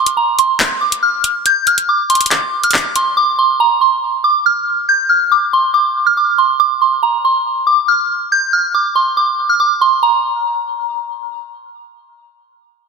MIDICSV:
0, 0, Header, 1, 3, 480
1, 0, Start_track
1, 0, Tempo, 428571
1, 1631, Time_signature, 4, 2, 24, 8
1, 14432, End_track
2, 0, Start_track
2, 0, Title_t, "Synth bell"
2, 0, Program_c, 0, 98
2, 0, Note_on_c, 0, 84, 74
2, 152, Note_off_c, 0, 84, 0
2, 190, Note_on_c, 0, 82, 75
2, 390, Note_off_c, 0, 82, 0
2, 436, Note_on_c, 0, 84, 82
2, 633, Note_off_c, 0, 84, 0
2, 907, Note_on_c, 0, 86, 72
2, 1108, Note_off_c, 0, 86, 0
2, 1149, Note_on_c, 0, 89, 81
2, 1349, Note_off_c, 0, 89, 0
2, 1639, Note_on_c, 0, 91, 89
2, 1835, Note_off_c, 0, 91, 0
2, 1873, Note_on_c, 0, 89, 82
2, 2072, Note_off_c, 0, 89, 0
2, 2113, Note_on_c, 0, 86, 74
2, 2312, Note_off_c, 0, 86, 0
2, 2349, Note_on_c, 0, 84, 72
2, 2549, Note_off_c, 0, 84, 0
2, 2590, Note_on_c, 0, 86, 80
2, 2928, Note_off_c, 0, 86, 0
2, 2954, Note_on_c, 0, 89, 80
2, 3052, Note_off_c, 0, 89, 0
2, 3069, Note_on_c, 0, 86, 83
2, 3269, Note_off_c, 0, 86, 0
2, 3312, Note_on_c, 0, 84, 80
2, 3511, Note_off_c, 0, 84, 0
2, 3550, Note_on_c, 0, 86, 101
2, 3750, Note_off_c, 0, 86, 0
2, 3792, Note_on_c, 0, 84, 82
2, 3991, Note_off_c, 0, 84, 0
2, 4032, Note_on_c, 0, 82, 81
2, 4231, Note_off_c, 0, 82, 0
2, 4269, Note_on_c, 0, 84, 70
2, 4469, Note_off_c, 0, 84, 0
2, 4749, Note_on_c, 0, 86, 78
2, 4949, Note_off_c, 0, 86, 0
2, 4994, Note_on_c, 0, 89, 84
2, 5192, Note_off_c, 0, 89, 0
2, 5473, Note_on_c, 0, 91, 93
2, 5672, Note_off_c, 0, 91, 0
2, 5704, Note_on_c, 0, 89, 76
2, 5906, Note_off_c, 0, 89, 0
2, 5953, Note_on_c, 0, 86, 79
2, 6152, Note_off_c, 0, 86, 0
2, 6196, Note_on_c, 0, 84, 87
2, 6393, Note_off_c, 0, 84, 0
2, 6427, Note_on_c, 0, 86, 90
2, 6767, Note_off_c, 0, 86, 0
2, 6792, Note_on_c, 0, 89, 78
2, 6891, Note_off_c, 0, 89, 0
2, 6912, Note_on_c, 0, 86, 77
2, 7111, Note_off_c, 0, 86, 0
2, 7149, Note_on_c, 0, 84, 77
2, 7349, Note_off_c, 0, 84, 0
2, 7388, Note_on_c, 0, 86, 97
2, 7589, Note_off_c, 0, 86, 0
2, 7633, Note_on_c, 0, 84, 74
2, 7831, Note_off_c, 0, 84, 0
2, 7871, Note_on_c, 0, 82, 75
2, 8070, Note_off_c, 0, 82, 0
2, 8116, Note_on_c, 0, 84, 79
2, 8313, Note_off_c, 0, 84, 0
2, 8587, Note_on_c, 0, 86, 70
2, 8788, Note_off_c, 0, 86, 0
2, 8829, Note_on_c, 0, 89, 80
2, 9029, Note_off_c, 0, 89, 0
2, 9319, Note_on_c, 0, 91, 90
2, 9515, Note_off_c, 0, 91, 0
2, 9553, Note_on_c, 0, 89, 81
2, 9752, Note_off_c, 0, 89, 0
2, 9794, Note_on_c, 0, 86, 70
2, 9992, Note_off_c, 0, 86, 0
2, 10029, Note_on_c, 0, 84, 71
2, 10229, Note_off_c, 0, 84, 0
2, 10270, Note_on_c, 0, 86, 79
2, 10609, Note_off_c, 0, 86, 0
2, 10634, Note_on_c, 0, 89, 80
2, 10732, Note_off_c, 0, 89, 0
2, 10750, Note_on_c, 0, 86, 82
2, 10950, Note_off_c, 0, 86, 0
2, 10992, Note_on_c, 0, 84, 81
2, 11191, Note_off_c, 0, 84, 0
2, 11231, Note_on_c, 0, 82, 82
2, 12626, Note_off_c, 0, 82, 0
2, 14432, End_track
3, 0, Start_track
3, 0, Title_t, "Drums"
3, 72, Note_on_c, 9, 42, 78
3, 184, Note_off_c, 9, 42, 0
3, 432, Note_on_c, 9, 42, 76
3, 544, Note_off_c, 9, 42, 0
3, 671, Note_on_c, 9, 39, 120
3, 783, Note_off_c, 9, 39, 0
3, 1033, Note_on_c, 9, 42, 80
3, 1145, Note_off_c, 9, 42, 0
3, 1390, Note_on_c, 9, 42, 86
3, 1502, Note_off_c, 9, 42, 0
3, 1631, Note_on_c, 9, 42, 79
3, 1743, Note_off_c, 9, 42, 0
3, 1869, Note_on_c, 9, 42, 79
3, 1981, Note_off_c, 9, 42, 0
3, 1992, Note_on_c, 9, 42, 79
3, 2104, Note_off_c, 9, 42, 0
3, 2351, Note_on_c, 9, 42, 48
3, 2411, Note_off_c, 9, 42, 0
3, 2411, Note_on_c, 9, 42, 59
3, 2471, Note_off_c, 9, 42, 0
3, 2471, Note_on_c, 9, 42, 73
3, 2531, Note_off_c, 9, 42, 0
3, 2531, Note_on_c, 9, 42, 80
3, 2591, Note_off_c, 9, 42, 0
3, 2591, Note_on_c, 9, 39, 70
3, 2591, Note_on_c, 9, 42, 78
3, 2703, Note_off_c, 9, 39, 0
3, 2703, Note_off_c, 9, 42, 0
3, 2951, Note_on_c, 9, 42, 45
3, 3031, Note_off_c, 9, 42, 0
3, 3031, Note_on_c, 9, 42, 64
3, 3071, Note_on_c, 9, 39, 116
3, 3111, Note_off_c, 9, 42, 0
3, 3111, Note_on_c, 9, 42, 73
3, 3183, Note_off_c, 9, 39, 0
3, 3223, Note_off_c, 9, 42, 0
3, 3310, Note_on_c, 9, 42, 87
3, 3422, Note_off_c, 9, 42, 0
3, 14432, End_track
0, 0, End_of_file